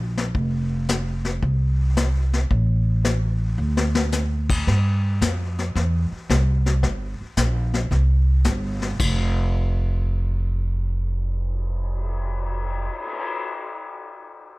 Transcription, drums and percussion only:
0.17 snare
0.35 brush sweep, kick
0.89 snare, hi-hat pedal
1.25 snare
1.43 brush sweep, kick
1.97 snare, hi-hat pedal
2.33 snare
2.51 brush sweep, kick
3.04 snare, hi-hat pedal
3.77 snare
3.95 snare
4.12 snare, hi-hat pedal
4.50 kick, crash
4.67 brush sweep, kick, snare
5.21 kick, snare, hi-hat pedal
5.58 snare
5.76 brush sweep, kick, snare
6.30 kick, snare, hi-hat pedal
6.66 snare
6.83 brush sweep, kick, snare
7.37 kick, snare, hi-hat pedal
7.74 snare
7.91 brush sweep, kick, snare
8.44 kick, snare, hi-hat pedal
8.82 snare
9.00 kick, crash
9.37 cymbal swell

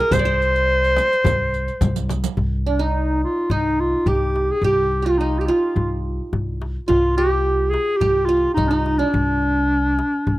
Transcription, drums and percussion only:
0.11 riq, frame drum, darbuka dum
0.41 riq, darbuka ka
0.55 riq, darbuka ka
0.69 darbuka ka
0.83 riq, darbuka ka
0.96 riq, darbuka tek, frame drum
1.13 riq
1.24 riq, darbuka dum, frame drum
1.54 riq, darbuka ka
1.67 riq, darbuka ka
1.81 riq, frame drum, darbuka dum
1.96 riq, darbuka ka
2.09 riq, darbuka tek, frame drum
2.24 riq
2.37 darbuka dum
2.66 darbuka ka
2.81 darbuka ka
3.09 darbuka ka
3.37 darbuka ka
3.50 darbuka dum
4.06 darbuka dum
4.36 darbuka tek
4.63 darbuka dum
4.92 darbuka ka
5.35 darbuka ka
5.50 darbuka tek
5.63 darbuka ka
5.76 darbuka dum
6.33 darbuka dum
6.62 darbuka tek
6.89 darbuka dum
7.32 darbuka ka
7.60 darbuka ka
7.74 darbuka tek
7.88 darbuka ka
8.01 darbuka dum
8.57 darbuka dum
8.86 darbuka tek
9.14 darbuka dum
9.42 darbuka ka
9.56 darbuka ka
9.71 darbuka ka
9.99 darbuka tek
10.13 darbuka ka
10.27 darbuka dum

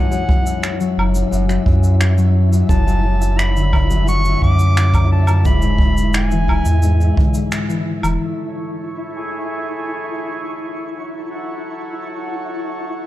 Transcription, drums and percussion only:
0.12 cabasa
0.29 kick
0.46 cabasa
0.63 finger snap, cabasa
0.80 cabasa
0.99 low woodblock
1.15 cabasa
1.33 cabasa
1.49 finger snap, cabasa
1.66 kick
1.84 cabasa
2.01 finger snap, cabasa
2.18 cabasa
2.53 cabasa
2.69 kick, cabasa
2.88 cabasa
3.22 cabasa
3.39 finger snap, cabasa
3.57 cabasa
3.73 kick, low woodblock
3.90 cabasa
4.08 cabasa
4.25 cabasa
4.42 kick
4.59 cabasa
4.77 finger snap, cabasa
4.94 kick, cabasa, low woodblock
5.27 cabasa, low woodblock
5.45 kick, cabasa
5.62 cabasa
5.78 kick
5.98 cabasa
6.14 finger snap, cabasa
6.31 cabasa
6.48 kick, low woodblock
6.65 cabasa
6.83 cabasa
7.01 cabasa
7.17 kick
7.34 cabasa
7.52 finger snap, cabasa
7.70 cabasa
8.03 cabasa, low woodblock

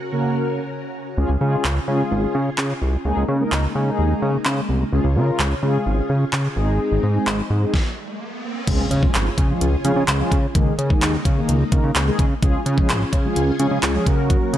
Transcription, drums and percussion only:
1.65 clap
2.58 clap
3.52 clap
4.45 clap
5.39 clap
6.33 clap
7.27 clap
7.74 kick, snare
8.67 kick, closed hi-hat, crash
8.91 closed hi-hat
9.03 kick
9.14 clap, closed hi-hat
9.38 kick, closed hi-hat
9.61 closed hi-hat
9.85 closed hi-hat
10.08 clap, closed hi-hat
10.32 kick, closed hi-hat
10.55 kick, closed hi-hat
10.79 closed hi-hat
10.90 kick
11.02 clap, closed hi-hat
11.25 kick, closed hi-hat
11.49 closed hi-hat
11.72 kick, closed hi-hat
11.95 clap, closed hi-hat
12.19 kick, closed hi-hat
12.43 kick, closed hi-hat
12.66 closed hi-hat
12.78 kick
12.89 clap, closed hi-hat
13.13 kick, closed hi-hat
13.36 closed hi-hat
13.60 closed hi-hat
13.83 clap, closed hi-hat
14.06 kick, closed hi-hat
14.30 kick, closed hi-hat
14.54 closed hi-hat

